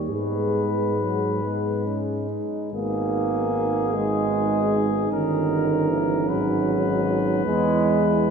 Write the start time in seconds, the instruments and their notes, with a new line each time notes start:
Already playing: tuba D#2
0.10 tuba G#2, trombone G#3, euphonium B3, french horn section G#4, flugelhorn B4
1.00 trombone F#3
1.43 trombone G#3, euphonium B3
1.86 euphonium C#4
2.30 euphonium D#4
2.73 tuba G#1, trombone A#3, euphonium B3, french horn section D#4, flugelhorn G#4
3.94 trombone G#3
5.11 tuba G1, trombone D#3, euphonium C#4, flugelhorn A#4
5.90 trombone E3
6.29 tuba G#1, trombone F#3, flugelhorn B4
7.45 tuba E2, trombone G#3, euphonium B3, french horn section E4